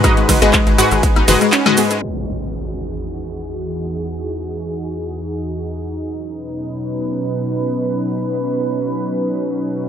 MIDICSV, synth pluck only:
0, 0, Header, 1, 2, 480
1, 0, Start_track
1, 0, Tempo, 500000
1, 9493, End_track
2, 0, Start_track
2, 0, Title_t, "Synth pluck"
2, 0, Program_c, 0, 84
2, 39, Note_on_c, 0, 44, 97
2, 39, Note_on_c, 0, 56, 89
2, 39, Note_on_c, 0, 66, 90
2, 39, Note_on_c, 0, 71, 86
2, 39, Note_on_c, 0, 75, 106
2, 372, Note_off_c, 0, 44, 0
2, 372, Note_off_c, 0, 56, 0
2, 372, Note_off_c, 0, 66, 0
2, 373, Note_off_c, 0, 71, 0
2, 373, Note_off_c, 0, 75, 0
2, 403, Note_on_c, 0, 44, 91
2, 403, Note_on_c, 0, 56, 83
2, 403, Note_on_c, 0, 66, 82
2, 403, Note_on_c, 0, 71, 84
2, 403, Note_on_c, 0, 75, 98
2, 726, Note_off_c, 0, 44, 0
2, 726, Note_off_c, 0, 56, 0
2, 726, Note_off_c, 0, 66, 0
2, 726, Note_off_c, 0, 71, 0
2, 726, Note_off_c, 0, 75, 0
2, 752, Note_on_c, 0, 44, 94
2, 752, Note_on_c, 0, 56, 82
2, 752, Note_on_c, 0, 66, 84
2, 752, Note_on_c, 0, 71, 87
2, 752, Note_on_c, 0, 78, 100
2, 887, Note_off_c, 0, 44, 0
2, 887, Note_off_c, 0, 56, 0
2, 887, Note_off_c, 0, 66, 0
2, 887, Note_off_c, 0, 71, 0
2, 887, Note_off_c, 0, 78, 0
2, 1229, Note_on_c, 0, 44, 94
2, 1229, Note_on_c, 0, 56, 80
2, 1229, Note_on_c, 0, 66, 82
2, 1229, Note_on_c, 0, 71, 79
2, 1229, Note_on_c, 0, 75, 99
2, 1562, Note_off_c, 0, 56, 0
2, 1562, Note_off_c, 0, 66, 0
2, 1562, Note_off_c, 0, 71, 0
2, 1562, Note_off_c, 0, 75, 0
2, 1563, Note_off_c, 0, 44, 0
2, 1593, Note_on_c, 0, 44, 96
2, 1593, Note_on_c, 0, 56, 88
2, 1593, Note_on_c, 0, 66, 91
2, 1593, Note_on_c, 0, 71, 91
2, 1593, Note_on_c, 0, 75, 109
2, 1916, Note_off_c, 0, 44, 0
2, 1916, Note_off_c, 0, 56, 0
2, 1916, Note_off_c, 0, 66, 0
2, 1916, Note_off_c, 0, 71, 0
2, 1916, Note_off_c, 0, 75, 0
2, 9493, End_track
0, 0, End_of_file